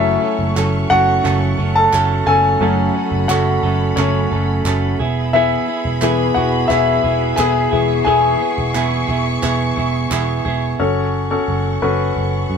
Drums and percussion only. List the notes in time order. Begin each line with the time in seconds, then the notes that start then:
0.57 clap
1.25 clap
1.93 clap
3.30 clap
3.98 clap
4.66 clap
6.02 clap
6.71 clap
7.38 clap
8.75 clap
9.43 clap
10.12 clap